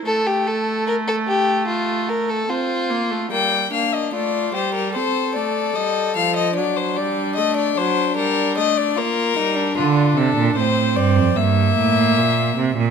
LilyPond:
<<
  \new Staff \with { instrumentName = "Violin" } { \time 4/4 \key g \minor \tempo 4 = 74 r1 | g''8 f''16 ees''16 d''8 c''16 bes'16 c''8 d''8 ees''8 f''16 ees''16 | d''16 c''16 d''8 ees''16 d''16 c''8 bes'8 ees''16 d''16 bes'4 | f'8 a'8 c''8 d''8 e''2 | }
  \new Staff \with { instrumentName = "Violin" } { \time 4/4 \key g \minor a'16 g'16 a'8 bes'16 a'16 g'8 f'8 bes'16 a'16 f'4 | bes8 d'8 f'8 g'8 a'2 | d'2. f'8 ees'16 d'16 | r1 | }
  \new Staff \with { instrumentName = "Viola" } { \time 4/4 \key g \minor a2. c'8 bes16 a16 | g8 bes8 a8 g8 c'8 a8 g8 f8 | fis8 g8 a8 fis8 g8 a8 bes8 g8 | d'4 c'4 bes2 | }
  \new Staff \with { instrumentName = "Cello" } { \clef bass \time 4/4 \key g \minor r1 | r1 | r1 | d8 c16 bes,16 a,8 g,16 f,16 g,8 a,8 bes,8 c16 bes,16 | }
>>